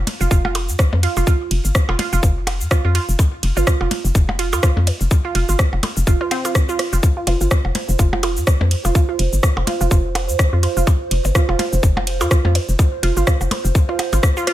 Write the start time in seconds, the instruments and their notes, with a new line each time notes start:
0.07 closed hi-hat, ride, percussion blips
0.21 fm bass F1, synth pluck F4, cabasa
0.31 fm bass F1, synth pluck F4, kick, cabasa
0.45 synth pluck F4, percussion blips
0.55 closed hi-hat, ride, percussion blips
0.69 fm bass F2, cabasa
0.79 kick, cross-stick, cabasa
0.93 fm bass F2, percussion blips
1.03 synth pluck F4, closed hi-hat, ride
1.17 fm bass F1, synth pluck F4, cabasa, percussion blips
1.27 synth pluck F4, kick, cabasa
1.51 fm bass F1, closed hi-hat, ride
1.65 fm bass G1, cabasa
1.75 kick, cross-stick, cabasa
1.89 fm bass F1, synth pluck F4, percussion blips
1.99 synth pluck F4, closed hi-hat, ride, percussion blips
2.13 fm bass F1, synth pluck F4, cabasa
2.23 fm bass F1, kick, percussion blips, cabasa
2.47 closed hi-hat, ride, percussion blips
2.61 fm bass F2, cabasa
2.71 synth pluck F4, kick, cross-stick, cabasa
2.85 fm bass F2, synth pluck F4
2.95 synth pluck F4, closed hi-hat, ride
3.09 fm bass F1, cabasa
3.19 kick, cabasa, percussion blips
3.43 fm bass F1, closed hi-hat, ride
3.57 fm bass G1, synth pluck F4, percussion blips, cabasa
3.67 synth pluck F4, kick, cross-stick, cabasa
3.81 fm bass F1, synth pluck F4, percussion blips
3.91 closed hi-hat, ride, percussion blips
4.04 fm bass F1, cabasa
4.15 fm bass F1, kick, cabasa
4.29 percussion blips
4.39 synth pluck F4, closed hi-hat, ride
4.53 fm bass F2, synth pluck F4, cabasa, percussion blips
4.63 synth pluck F4, kick, cross-stick, cabasa
4.77 fm bass F2, percussion blips
4.87 closed hi-hat, ride, percussion blips
5.01 fm bass F1, cabasa
5.11 kick, cabasa, percussion blips
5.25 synth pluck F4
5.35 fm bass F1, synth pluck F4, closed hi-hat, ride
5.49 fm bass G1, synth pluck F4, cabasa
5.59 kick, cross-stick, cabasa
5.73 fm bass F1, percussion blips
5.83 closed hi-hat, ride, percussion blips
5.97 fm bass F1, cabasa
6.07 fm bass F1, synth pluck F4, kick, cabasa
6.21 synth pluck F4, percussion blips
6.31 synth pluck C4, closed hi-hat, ride, percussion blips
6.45 synth pluck F4, closed hi-hat, cabasa, percussion blips
6.55 kick, cross-stick, cabasa
6.69 synth pluck F4, cabasa
6.79 cross-stick, closed hi-hat, ride
6.93 fm bass F1, synth pluck F4, cabasa
7.03 synth texture C5, kick, cabasa
7.17 synth pluck F4
7.27 fm bass F1, synth pluck F4, closed hi-hat, ride, percussion blips
7.41 fm bass G1, synth pluck F4, cabasa
7.51 kick, cross-stick, cabasa, percussion blips
7.65 fm bass F1, percussion blips
7.75 closed hi-hat, ride, percussion blips
7.89 fm bass F1, cabasa
7.99 fm bass F1, synth pluck F4, kick, cabasa
8.13 synth pluck F4, percussion blips
8.23 synth pluck F4, closed hi-hat, ride, percussion blips
8.37 fm bass F2, cabasa
8.47 kick, cross-stick, cabasa
8.61 fm bass F2, percussion blips
8.71 closed hi-hat, ride
8.85 fm bass F1, synth pluck F4, cabasa, percussion blips
8.95 synth pluck F4, kick, cabasa
9.09 synth pluck F4
9.19 fm bass F1, closed hi-hat, ride
9.33 fm bass G1, cabasa
9.43 kick, cross-stick, cabasa
9.57 fm bass F1, percussion blips
9.67 synth pluck F4, closed hi-hat, ride, percussion blips
9.81 fm bass F1, synth pluck F4, cabasa
9.91 fm bass F1, synth pluck F4, kick, percussion blips, cabasa
10.15 closed hi-hat, ride, percussion blips
10.29 fm bass F2, cabasa
10.39 kick, cross-stick, cabasa
10.53 fm bass F2, synth pluck F4
10.63 synth pluck F4, closed hi-hat, ride
10.77 fm bass F1, synth pluck F4, cabasa
10.87 kick, cabasa, percussion blips
11.11 fm bass F1, closed hi-hat, ride
11.25 fm bass G1, percussion blips, cabasa
11.35 synth pluck F4, kick, cross-stick, cabasa
11.49 fm bass F1, synth pluck F4, percussion blips
11.59 synth pluck F4, closed hi-hat, ride, percussion blips
11.73 fm bass F1, cabasa
11.83 fm bass F1, kick, cabasa
11.97 percussion blips
12.07 closed hi-hat, ride
12.21 fm bass F2, synth pluck F4, cabasa, percussion blips
12.31 synth pluck F4, kick, cross-stick, cabasa
12.45 fm bass F2, synth pluck F4, percussion blips
12.55 closed hi-hat, ride, percussion blips
12.69 fm bass F1, cabasa
12.79 kick, cabasa, percussion blips
13.03 fm bass F1, synth pluck F4, closed hi-hat, ride
13.17 fm bass G1, synth pluck F4, cabasa
13.27 synth pluck F4, kick, cross-stick, cabasa
13.41 fm bass F1, cabasa, percussion blips
13.51 closed hi-hat, ride, percussion blips
13.65 fm bass F1, cabasa
13.75 kick, cabasa
13.89 synth pluck F4, percussion blips
13.99 closed hi-hat, ride, percussion blips
14.13 fm bass G#1, synth pluck F4, closed hi-hat, cabasa, percussion blips
14.23 kick, cross-stick, cabasa
14.37 synth pluck F4, cabasa
14.47 synth pluck F4, cross-stick, closed hi-hat, ride